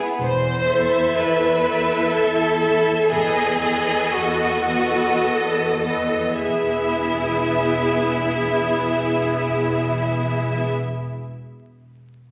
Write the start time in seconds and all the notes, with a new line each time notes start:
Already playing: B3
0.20 E1 E2 C5
0.69 E4 A4 E5
1.16 E2 B4
1.62 E4 A4 E5
2.12 E2 A4
2.62 E4 A4 E5
3.09 E1 E2 B3 G#4 A4 D#5
3.61 B3 A4 D#5
4.13 E2 F#4
4.64 B3 A4 D#5
5.22 E2
5.83 B3 A4 D#5
6.43 E1 E2 B3 E4 G#4 E5